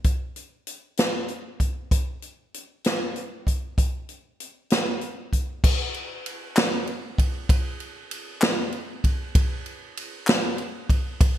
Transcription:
0.04 kick medium
0.04 closed hi-hat medium
0.36 closed hi-hat soft
0.67 closed hi-hat medium
0.97 snare medium
0.97 closed hi-hat medium
1.28 closed hi-hat soft
1.60 kick medium
1.60 closed hi-hat medium
1.91 kick medium
1.91 closed hi-hat medium
2.22 closed hi-hat soft
2.54 closed hi-hat medium
2.84 snare medium
2.84 closed hi-hat medium
3.16 closed hi-hat soft
3.47 kick medium
3.47 closed hi-hat medium
3.78 kick medium
3.78 closed hi-hat medium
4.09 closed hi-hat soft
4.40 closed hi-hat medium
4.70 snare medium
4.70 closed hi-hat medium
5.01 closed hi-hat soft
5.33 kick medium
5.33 closed hi-hat medium
5.64 kick loud
5.64 crash medium
5.94 ride soft
6.26 ride medium
6.56 snare loud
6.56 clap medium
6.56 ride medium
6.87 ride soft
7.18 kick medium
7.18 ride medium
7.49 kick loud
7.49 ride medium
7.80 ride soft
8.11 ride medium
8.41 snare loud
8.41 clap medium
8.41 ride medium
8.72 ride soft
9.04 kick medium
9.04 ride medium
9.35 kick loud
9.35 ride medium
9.66 ride soft
9.97 ride medium
10.27 snare loud
10.27 clap medium
10.27 ride medium
10.58 ride soft
10.90 kick medium
10.90 ride medium
11.21 kick loud
11.21 ride medium

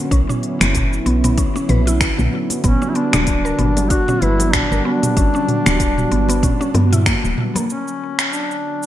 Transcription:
0.00 7.65 D3 medium
0.00 7.65 F#3 medium
0.00 7.65 B3 medium
0.00 2.60 C#4 medium
0.11 0.24 B1 medium
0.11 0.28 C#4 medium
0.11 2.62 E4 medium
0.11 kick loud
0.11 open hi-hat medium
0.11 cabasa soft
0.29 0.42 C#4 medium
0.29 mid tom medium
0.29 muted conga soft
0.29 cabasa soft
0.43 open hi-hat soft
0.60 0.99 F#1 loud
0.60 finger snap medium
0.60 open hi-hat soft
0.60 muted conga medium
0.60 high conga medium
0.60 low conga medium
0.60 cabasa medium
0.74 kick medium
0.74 mid tom medium
0.74 open hi-hat medium
0.74 cabasa medium
0.93 cabasa soft
1.06 1.47 B1 medium
1.06 1.23 B3 medium
1.06 open hi-hat soft
1.24 1.36 B3 medium
1.24 mid tom medium
1.24 open hi-hat soft
1.24 muted conga medium
1.24 cabasa medium
1.38 1.54 C#4 medium
1.38 kick medium
1.38 open hi-hat medium
1.38 cabasa medium
1.56 1.69 C#4 medium
1.56 muted conga medium
1.56 cabasa soft
1.69 2.10 B1 medium
1.69 1.86 B4 medium
1.69 mid tom medium
1.69 open hi-hat soft
1.69 high conga medium
1.69 low conga medium
1.87 2.48 E4 medium
1.87 open hi-hat soft
1.87 cabasa medium
2.01 finger snap medium
2.01 kick loud
2.01 open hi-hat soft
2.01 cabasa soft
2.18 2.28 B1 loud
2.18 mid tom medium
2.18 high conga medium
2.18 cabasa soft
2.33 high conga medium
2.50 open hi-hat soft
2.50 high conga medium
2.50 cabasa medium
2.63 2.77 G1 medium
2.63 7.65 G3 medium
2.63 2.74 B3 medium
2.63 2.91 C#4 medium
2.63 7.65 F#4 medium
2.63 kick medium
2.63 mid tom medium
2.63 open hi-hat medium
2.63 cabasa medium
2.82 2.95 C#4 medium
2.82 muted conga soft
2.82 cabasa soft
2.89 2.97 E4 medium
2.95 3.12 B3 medium
2.95 3.92 D4 medium
2.95 open hi-hat soft
3.13 3.52 D1 loud
3.13 3.26 D4 loud
3.13 finger snap medium
3.13 mid tom medium
3.13 open hi-hat soft
3.13 muted conga medium
3.13 high conga medium
3.13 low conga medium
3.13 cabasa medium
3.27 kick medium
3.27 open hi-hat medium
3.27 cabasa medium
3.45 3.53 A#4 medium
3.45 cabasa soft
3.59 4.00 G1 medium
3.59 3.76 B3 medium
3.59 mid tom medium
3.59 open hi-hat soft
3.77 open hi-hat soft
3.77 muted conga medium
3.77 cabasa medium
3.90 4.07 D4 medium
3.90 4.23 F#4 loud
3.90 kick medium
3.90 open hi-hat medium
3.90 cabasa medium
4.08 4.21 C#4 medium
4.08 mid tom medium
4.08 muted conga medium
4.08 high conga medium
4.08 cabasa soft
4.21 4.63 G1 medium
4.21 4.55 E4 loud
4.21 4.39 B4 medium
4.21 open hi-hat soft
4.21 high conga medium
4.40 open hi-hat soft
4.40 high conga medium
4.40 low conga medium
4.40 cabasa medium
4.53 4.84 D4 loud
4.53 finger snap medium
4.53 kick medium
4.53 mid tom medium
4.53 open hi-hat soft
4.53 cabasa soft
4.71 4.81 G1 loud
4.71 4.79 A#4 medium
4.71 cabasa soft
4.85 5.02 B3 medium
4.85 7.02 D4 loud
5.03 mid tom medium
5.03 open hi-hat soft
5.03 high conga medium
5.03 cabasa medium
5.17 5.29 G1 loud
5.17 5.33 C#4 medium
5.17 kick loud
5.17 open hi-hat medium
5.17 cabasa medium
5.34 5.47 C#4 medium
5.34 muted conga soft
5.34 cabasa soft
5.48 mid tom medium
5.48 open hi-hat soft
5.66 6.05 D1 loud
5.66 finger snap medium
5.66 open hi-hat soft
5.66 muted conga medium
5.66 high conga medium
5.66 low conga medium
5.66 cabasa medium
5.80 kick medium
5.80 open hi-hat medium
5.80 cabasa medium
5.98 mid tom medium
5.98 cabasa soft
6.12 6.52 G1 medium
6.12 6.28 B3 medium
6.12 open hi-hat soft
6.29 6.42 B3 medium
6.29 open hi-hat soft
6.29 muted conga medium
6.29 cabasa medium
6.43 6.59 C#4 medium
6.43 kick loud
6.43 mid tom medium
6.43 open hi-hat medium
6.43 cabasa medium
6.61 6.74 C#4 medium
6.61 muted conga medium
6.61 cabasa soft
6.74 7.15 G2 loud
6.74 6.91 B3 medium
6.74 open hi-hat soft
6.74 high conga medium
6.74 low conga medium
6.93 7.05 E4 medium
6.93 mid tom medium
6.93 open hi-hat soft
6.93 cabasa medium
7.06 7.23 A#3 medium
7.06 finger snap medium
7.06 kick medium
7.06 open hi-hat medium
7.06 cabasa soft
7.24 7.33 D1 medium
7.24 high conga medium
7.24 cabasa soft
7.38 mid tom medium
7.55 7.68 A#3 medium
7.55 open hi-hat soft
7.55 high conga medium
7.55 low conga medium
7.55 cabasa medium
7.69 8.86 D3 medium
7.69 8.86 F#3 medium
7.69 8.86 B3 medium
7.69 8.34 C#4 medium
7.69 8.86 F#4 medium
7.69 8.86 C#5 medium
7.69 cabasa soft
7.88 cabasa soft
8.19 finger snap medium
8.19 cabasa medium
8.33 8.86 D4 medium
8.33 cabasa soft
8.51 cabasa soft
8.83 cabasa medium

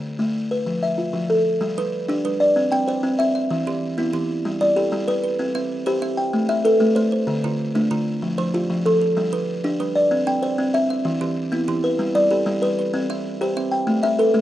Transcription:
0.19 0.51 A3 medium
0.51 0.83 B4 medium
0.66 0.98 F3 medium
0.83 1.30 E5 medium
0.98 1.46 F4 medium
1.13 1.45 F3 medium
1.30 1.77 A4 medium
1.61 1.93 G3 medium
1.78 2.09 G3 medium
1.78 2.24 B4 medium
2.08 2.40 D4 medium
2.08 2.56 G4 medium
2.25 2.56 G3 medium
2.25 2.72 B4 medium
2.40 2.72 D5 medium
2.56 2.88 C4 medium
2.72 3.04 C4 medium
2.72 3.19 G5 medium
2.88 3.35 C5 medium
2.88 3.35 D5 medium
3.03 3.35 C4 medium
3.19 3.51 C4 medium
3.19 3.66 E5 medium
3.35 3.82 E5 medium
3.50 3.82 E3 medium
3.67 3.98 E3 medium
3.67 4.12 G4 medium
3.98 4.29 B3 medium
3.98 4.45 E4 medium
4.13 4.45 E3 medium
4.13 4.61 G4 medium
4.45 4.77 G3 medium
4.61 4.92 G3 medium
4.61 5.08 D5 medium
4.76 5.24 G4 medium
4.76 5.24 A4 medium
4.92 5.24 G3 medium
5.08 5.40 G3 medium
5.08 5.55 B4 medium
5.24 5.71 B4 medium
5.39 5.71 C4 medium
5.55 5.87 C4 medium
5.55 6.01 E5 medium
5.86 6.18 G4 medium
5.86 6.34 C5 medium
6.02 6.34 C4 medium
6.02 6.49 E5 medium
6.17 6.49 G5 medium
6.33 6.65 A3 medium
6.49 6.81 A3 medium
6.49 6.96 E5 medium
6.65 7.12 A4 medium
6.65 7.12 B4 medium
6.80 7.12 A3 medium
6.96 7.28 A3 medium
6.96 7.43 C5 medium
7.12 7.59 C5 medium
7.27 7.59 D3 medium
7.44 7.75 D3 medium
7.44 7.90 F4 medium
7.75 8.07 A3 medium
7.75 8.22 D4 medium
7.91 8.22 D3 medium
7.91 8.38 F4 medium
8.22 8.54 F3 medium
8.38 8.70 F3 medium
8.38 8.85 C5 medium
8.54 9.01 F4 medium
8.54 9.01 G4 medium
8.70 9.01 F3 medium
8.86 9.17 F3 medium
8.86 9.33 A4 medium
9.01 9.48 A4 medium
9.17 9.48 G3 medium
9.33 9.64 G3 medium
9.33 9.79 B4 medium
9.64 9.95 D4 medium
9.64 10.11 G4 medium
9.80 10.11 G3 medium
9.80 10.27 B4 medium
9.95 10.27 D5 medium
10.11 10.42 C4 medium
10.27 10.58 C4 medium
10.27 10.74 G5 medium
10.43 10.90 C5 medium
10.43 10.90 D5 medium
10.58 10.90 C4 medium
10.74 11.06 C4 medium
10.74 11.21 E5 medium
10.90 11.37 E5 medium
11.05 11.36 E3 medium
11.21 11.52 E3 medium
11.21 11.67 G4 medium
11.52 11.83 B3 medium
11.52 12.00 E4 medium
11.68 11.99 E3 medium
11.68 12.15 G4 medium
11.84 12.15 B4 medium
11.99 12.31 G3 medium
12.15 12.47 G3 medium
12.15 12.62 D5 medium
12.31 12.78 G4 medium
12.31 12.78 A4 medium
12.46 12.78 G3 medium
12.62 12.94 G3 medium
12.62 13.09 B4 medium
12.79 13.25 B4 medium
12.94 13.25 C4 medium
13.10 13.41 C4 medium
13.10 13.56 E5 medium
13.41 13.72 G4 medium
13.41 13.88 C5 medium
13.57 13.88 C4 medium
13.57 14.04 E5 medium
13.72 14.03 G5 medium
13.87 14.19 A3 medium
14.03 14.35 A3 medium
14.03 14.41 E5 medium
14.19 14.41 A4 medium
14.19 14.41 B4 medium
14.34 14.41 A3 medium

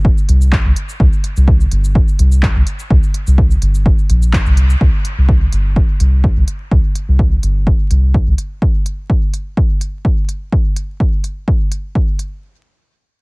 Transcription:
0.00 0.11 G1 medium
0.05 kick loud
0.18 cabasa soft
0.29 0.58 C2 loud
0.29 closed hi-hat medium
0.42 cabasa soft
0.52 kick loud
0.52 clap medium
0.65 0.73 C2 loud
0.76 closed hi-hat medium
0.89 cabasa soft
1.00 1.08 C2 loud
1.00 kick loud
1.13 cabasa soft
1.24 closed hi-hat medium
1.37 1.66 C2 loud
1.37 cabasa soft
1.48 kick loud
1.61 cabasa soft
1.71 2.01 G1 loud
1.71 closed hi-hat medium
1.84 cabasa soft
1.95 kick loud
2.08 cabasa soft
2.19 2.49 C2 loud
2.19 closed hi-hat medium
2.32 cabasa soft
2.43 kick loud
2.43 clap medium
2.56 2.63 C2 loud
2.67 closed hi-hat medium
2.79 cabasa soft
2.90 2.98 C2 loud
2.90 kick loud
3.03 cabasa soft
3.14 closed hi-hat medium
3.27 3.56 C2 loud
3.27 cabasa medium
3.38 kick loud
3.51 cabasa soft
3.62 3.92 G1 loud
3.62 closed hi-hat medium
3.75 cabasa medium
3.86 kick loud
3.99 cabasa soft
4.10 4.39 A#1 medium
4.10 closed hi-hat medium
4.22 cabasa medium
4.33 kick loud
4.33 clap medium
4.46 4.75 C2 loud
4.46 cabasa soft
4.57 closed hi-hat medium
4.70 cabasa soft
4.81 4.89 C2 medium
4.81 kick loud
5.05 closed hi-hat medium
5.18 5.47 C2 loud
5.29 kick loud
5.52 5.82 G1 medium
5.52 closed hi-hat medium
5.76 kick loud
6.00 6.30 C2 loud
6.00 closed hi-hat medium
6.24 kick loud
6.37 6.44 C2 loud
6.48 closed hi-hat medium
6.71 6.79 C2 loud
6.71 kick loud
6.95 closed hi-hat medium
7.08 7.37 C2 loud
7.19 kick loud
7.43 7.73 G1 medium
7.43 closed hi-hat medium
7.67 kick loud
7.91 8.20 C2 loud
7.91 closed hi-hat medium
8.14 kick loud
8.27 8.35 C2 loud
8.38 closed hi-hat medium
8.62 kick loud
8.86 closed hi-hat medium
9.10 kick loud
9.34 closed hi-hat medium
9.57 kick loud
9.81 closed hi-hat medium
10.05 kick loud
10.29 closed hi-hat medium
10.52 kick loud
10.76 closed hi-hat medium
11.00 kick loud
11.24 closed hi-hat medium
11.48 kick loud
11.72 closed hi-hat medium
11.95 kick loud
12.19 closed hi-hat medium

